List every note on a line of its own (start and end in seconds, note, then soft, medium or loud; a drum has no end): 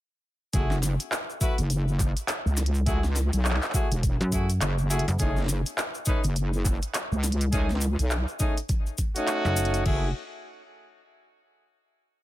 0.53 0.97 F#1 loud
0.53 0.75 A3 medium
0.53 0.75 E4 medium
0.53 0.75 F#4 medium
0.53 0.75 G#4 medium
0.53 kick loud
0.53 closed hi-hat medium
0.53 cabasa medium
0.71 snare soft
0.71 cabasa soft
0.83 snare soft
0.83 closed hi-hat soft
0.83 cabasa loud
1.00 closed hi-hat medium
1.00 cabasa soft
1.12 clap loud
1.12 cabasa medium
1.30 cabasa soft
1.41 1.56 A3 medium
1.41 1.56 E4 medium
1.41 1.56 F#4 medium
1.41 1.56 B4 loud
1.41 kick loud
1.41 cabasa medium
1.58 2.14 F#1 loud
1.58 closed hi-hat medium
1.58 cabasa soft
1.70 closed hi-hat medium
1.70 cabasa soft
1.88 cabasa soft
1.99 kick loud
1.99 clap soft
1.99 closed hi-hat soft
1.99 cabasa medium
2.17 closed hi-hat medium
2.17 cabasa soft
2.28 clap loud
2.28 closed hi-hat medium
2.28 cabasa soft
2.46 3.30 C#2 loud
2.46 cabasa soft
2.57 snare soft
2.57 closed hi-hat medium
2.57 cabasa medium
2.66 closed hi-hat medium
2.74 cabasa soft
2.86 3.02 A3 medium
2.86 3.02 E4 medium
2.86 3.02 F#4 medium
2.86 3.02 G#4 loud
2.86 kick loud
2.86 closed hi-hat medium
2.86 cabasa medium
3.04 snare soft
3.04 cabasa soft
3.16 snare soft
3.16 closed hi-hat soft
3.16 cabasa medium
3.33 3.59 B1 loud
3.33 closed hi-hat medium
3.33 cabasa soft
3.45 clap loud
3.45 cabasa medium
3.51 clap loud
3.54 clap medium
3.62 clap medium
3.62 cabasa soft
3.64 clap medium
3.70 3.89 A3 medium
3.70 3.89 E4 medium
3.70 3.89 F#4 medium
3.70 3.89 G#4 loud
3.70 clap soft
3.74 kick loud
3.74 cabasa loud
3.91 4.18 E1 loud
3.91 closed hi-hat medium
3.91 cabasa soft
4.03 kick loud
4.03 closed hi-hat medium
4.03 cabasa medium
4.21 4.60 F#2 loud
4.21 cabasa soft
4.32 4.47 A3 medium
4.32 4.47 E4 medium
4.32 4.47 F#4 medium
4.32 4.47 G#4 medium
4.32 kick medium
4.32 closed hi-hat soft
4.32 cabasa loud
4.49 closed hi-hat medium
4.49 cabasa soft
4.61 5.05 F#1 loud
4.61 clap loud
4.61 closed hi-hat medium
4.61 cabasa medium
4.78 cabasa soft
4.90 5.05 A3 medium
4.90 5.05 E4 medium
4.90 5.05 F#4 medium
4.90 5.05 G#4 medium
4.90 closed hi-hat medium
4.90 cabasa medium
4.99 closed hi-hat medium
5.08 5.18 F#1 medium
5.08 closed hi-hat medium
5.08 cabasa soft
5.19 5.63 F#1 loud
5.19 5.41 A3 medium
5.19 5.41 C#4 medium
5.19 5.41 D#4 medium
5.19 5.41 G#4 medium
5.19 kick loud
5.19 closed hi-hat medium
5.19 cabasa medium
5.36 snare soft
5.36 cabasa soft
5.39 snare soft
5.43 snare soft
5.45 snare soft
5.47 snare soft
5.47 cabasa loud
5.49 snare soft
5.49 closed hi-hat soft
5.66 closed hi-hat medium
5.66 cabasa soft
5.78 clap loud
5.78 cabasa medium
5.95 cabasa soft
6.06 6.22 A3 medium
6.06 6.22 C#4 medium
6.06 6.22 D#4 medium
6.06 6.22 B4 loud
6.06 kick loud
6.06 cabasa medium
6.24 6.80 F#1 medium
6.24 closed hi-hat medium
6.24 cabasa soft
6.36 closed hi-hat medium
6.36 cabasa medium
6.53 cabasa soft
6.65 kick loud
6.65 clap soft
6.65 closed hi-hat soft
6.65 cabasa loud
6.82 closed hi-hat medium
6.82 cabasa soft
6.94 clap loud
6.94 closed hi-hat medium
6.94 cabasa medium
7.12 7.96 C#2 loud
7.12 cabasa soft
7.24 snare soft
7.24 closed hi-hat medium
7.24 cabasa medium
7.32 closed hi-hat medium
7.41 closed hi-hat medium
7.41 cabasa soft
7.53 7.68 A3 medium
7.53 7.68 C#4 medium
7.53 7.68 D#4 medium
7.53 7.68 G#4 loud
7.53 kick loud
7.53 closed hi-hat medium
7.53 cabasa medium
7.70 snare soft
7.70 cabasa soft
7.76 snare soft
7.81 closed hi-hat soft
7.81 cabasa loud
7.99 8.25 B1 loud
7.99 closed hi-hat medium
7.99 cabasa soft
8.10 clap loud
8.10 cabasa medium
8.28 cabasa soft
8.39 8.55 A3 medium
8.39 8.55 C#4 medium
8.39 8.55 D#4 medium
8.39 8.55 G#4 loud
8.39 kick loud
8.39 cabasa medium
8.57 closed hi-hat medium
8.57 cabasa soft
8.69 kick loud
8.69 closed hi-hat medium
8.69 cabasa medium
8.86 cabasa soft
8.98 kick medium
8.98 closed hi-hat soft
8.98 cabasa loud
9.16 9.83 A3 loud
9.16 9.83 C#4 medium
9.16 9.83 D#4 loud
9.16 9.83 F#4 loud
9.16 closed hi-hat medium
9.16 cabasa soft
9.27 clap loud
9.27 closed hi-hat medium
9.27 cabasa medium
9.45 9.84 F#1 medium
9.45 cabasa soft
9.57 closed hi-hat soft
9.57 cabasa loud
9.65 closed hi-hat medium
9.74 closed hi-hat medium
9.74 cabasa soft
9.86 10.13 F#1 loud
9.86 10.08 A3 medium
9.86 10.09 E4 medium
9.86 10.08 F#4 medium
9.86 10.09 G#4 medium
9.86 kick loud
9.86 crash medium